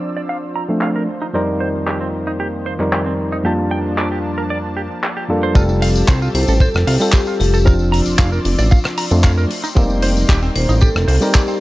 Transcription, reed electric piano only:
Already playing: F3 C4 D4
0.69 F3 A3 C4 D4
1.33 F2 G3 C4 D#4 A#4 D5
2.79 F2 G3 C4 D#4 A#4 D5
3.44 F2 G3 A#3 D4 F4 A5
5.29 F2 G3 A#3 D4 F4 A4
5.55 G3 C4 F4 A4
7.00 G3 C4 F4 A4
7.65 F3 C4 D4
9.11 F3 A3 C4 D4
9.75 G3 A#3 C4 D#4 D5
11.21 G3 C4 D#4 A#4 D5

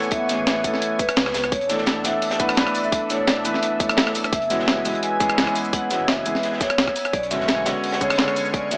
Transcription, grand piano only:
Already playing: E3 A3 B3 C#4 A4
0.29 E3 A3 B3 C#4 G#4
0.64 E3 A3 B3 C#4 A4
1.69 E3 A3 B3 D4 A4
2.04 E3 A3 B3 D4 A4
2.39 E3 A3 B3 D4 B4
2.56 E3 A3 B3 D4 B4
3.10 E3 A3 B3 D4 A4
3.44 E3 A3 B3 D4 B4
3.79 E3 A3 B3 D4 C#5
4.50 E3 G#3 B3 C#4 F#4
4.85 E3 G#3 B3 C#4 F#4
5.20 E3 G#3 B3 C#4 G#4
5.37 E3 G#3 B3 C#4 G#4
5.90 E3 G#3 B3 C#4 F#4
6.25 E3 G#3 B3 C#4 G#4
7.31 D3 G#3 B3 C#4 F#4
7.66 D3 G#3 B3 C#4 F#4
8.01 D3 G#3 B3 C#4 G#4
8.18 D3 G#3 B3 C#4 G#4
8.71 D3 G#3 B3 C#4 F#4

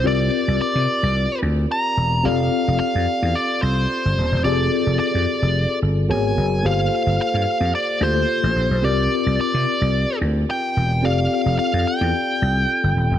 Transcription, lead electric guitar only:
0.07 D5
0.61 D5
1.72 A#5
2.25 F5
2.80 F5
3.35 D5
3.62 C5
4.44 D5
4.99 D5
6.11 G#5
6.66 F5
7.22 F5
7.75 D5
8.03 C5
8.84 D5
9.41 D5
10.50 G5
11.05 F5
11.59 F5
11.87 G5

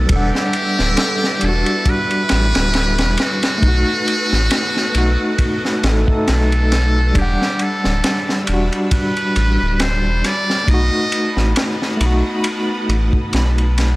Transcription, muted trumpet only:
0.13 G4
1.45 A4
1.89 B4
3.23 F#4
6.30 A4
7.18 G4
7.62 A4
8.93 B4
9.81 C5
10.26 D5
10.70 D#5

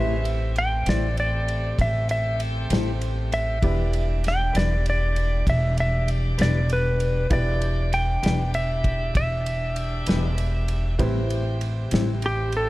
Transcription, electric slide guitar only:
Already playing: E5
0.58 G5
0.89 D5
1.20 D5
1.81 E5
2.11 E5
3.34 E5
4.28 G5
4.57 D5
4.90 D5
5.50 E5
5.80 E5
6.42 D5
6.73 B4
7.33 D5
7.94 G5
8.55 E5
9.17 E5
12.26 G4
12.57 A4

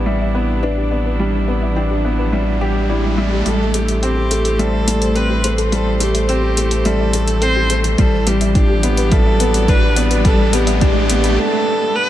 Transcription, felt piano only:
Already playing: G3 B3 D4
0.06 G3
0.35 B3
0.63 D4
0.91 B3
1.20 G3
1.48 B3
1.76 D4
2.05 B3
2.33 G3
2.61 G4
2.89 E4
3.18 G3
3.46 G3
3.74 A3
4.03 C4
4.31 A3
4.59 G3
4.87 G3
5.16 C4
5.44 A3
5.72 G3
6.01 A3
6.29 C4
6.57 A3
6.86 G3
7.14 A3
7.42 C4
7.70 A3
7.99 G3
8.27 G3
8.55 D4
8.83 B3
9.11 G3
9.40 B3
9.68 D4
9.96 B3
10.25 G3
10.53 B3
10.81 D4
11.10 B3

